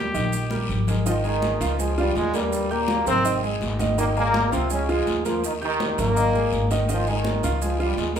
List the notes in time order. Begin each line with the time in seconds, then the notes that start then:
Already playing: G4
0.14 A#1 D#3 D#4 D#5, high conga, low conga, short guiro, maracas
0.32 high conga, long guiro, maracas
0.51 G3 G4 A#4, high conga, maracas
0.69 G#1, low conga, short guiro, maracas
0.87 G#3 G#4 A#4, low conga, short guiro, maracas
1.06 D#3 F3 D#4 F4 D#5, high conga, long guiro, maracas
1.24 D#3 G#3 D#4 G#4 G#5, high conga, maracas
1.42 high conga, short guiro, maracas
1.60 C#2 F3 F4 F5, high conga, short guiro, maracas
1.79 F3 G#3 F4 G#4 G#5, high conga, long guiro, maracas
1.97 G2 F3 G3 F4 F5, high conga, maracas
2.15 D#2 G#2 G#3, high conga, short guiro, maracas
2.34 G2 G3 A#3 A#4 A#5, high conga, short guiro, maracas
2.52 high conga, long guiro, maracas
2.70 A#2 A#3 G4 G5 G6, high conga, maracas
2.88 high conga, short guiro, maracas
3.06 G#1 C3 A#3 C4 A#4 A#5, high conga, low conga, short guiro, maracas
3.25 D#3 D#4 D#5, high conga, long guiro, maracas
3.43 G#3 G#4 G#5, high conga, maracas
3.61 G#1, high conga, short guiro, maracas
3.79 D#3 D#4 D#5, high conga, short guiro, maracas
3.98 A#2 D#3 A#3 D#4 D#5, high conga, long guiro, maracas
4.15 A#2 G#3 A#3 G#4 G#5, high conga, maracas
4.34 high conga, short guiro, maracas
4.52 C#2 C3 F3 C4 F4 F5, high conga, short guiro, maracas
4.70 C#3 G#3 C#4 G#4 G#5, high conga, long guiro, maracas
4.89 G#2 F3 G#3 F4 F5, high conga, maracas
5.07 D#2, high conga, short guiro, maracas
5.25 F3 A#3 F4 A#4 A#5, high conga, short guiro, maracas
5.44 D#3 D#4, long guiro, maracas
5.61 D#3 D#4 G4 G5 G6, high conga, maracas
5.80 high conga, short guiro, maracas
5.98 G#1 A#2 A#3 A#4 A#5, high conga, low conga, short guiro, maracas
6.16 D#3 D#4 D#5, high conga, long guiro, maracas
6.34 G#3 G#4 G#5, high conga, maracas
6.52 G#1, high conga, short guiro, maracas
6.71 D#3 D#4 D#5, high conga, short guiro, maracas
6.89 D#3 F3 D#4 F4 D#5, high conga, long guiro, maracas
7.07 D#3 G#3 D#4 G#4 G#5, high conga, maracas
7.24 high conga, short guiro, maracas
7.43 C#2 F3 F4 F5, high conga, short guiro, maracas
7.61 F3 G#3 F4 G#4 G#5, high conga, long guiro, maracas
7.79 G2 F3 G3 F4 F5, high conga, maracas
7.97 D#2 G#2 G#3, high conga, short guiro, maracas
8.16 A#3 A#4 A#5, high conga, short guiro, maracas